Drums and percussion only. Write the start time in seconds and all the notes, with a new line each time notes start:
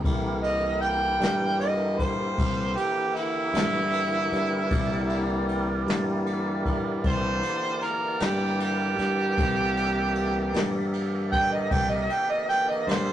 0.04 kick, ride
0.44 ride
0.82 ride
1.21 snare, ride
1.61 ride
1.99 kick, ride
2.38 kick, ride
2.77 ride
3.16 ride
3.54 snare, ride
3.94 ride
4.32 snare, ride
4.71 kick, ride
5.09 ride
5.49 ride
5.88 snare, ride
6.26 ride
6.66 kick, ride
7.04 kick, ride
7.43 ride
7.82 snare, ride
8.20 snare, ride
8.60 ride
8.99 snare, ride
9.38 kick, ride
9.77 ride
10.15 ride
10.54 snare, ride
10.93 ride
11.32 kick, ride
11.71 kick, ride
12.10 ride
12.50 snare, ride
12.89 snare, ride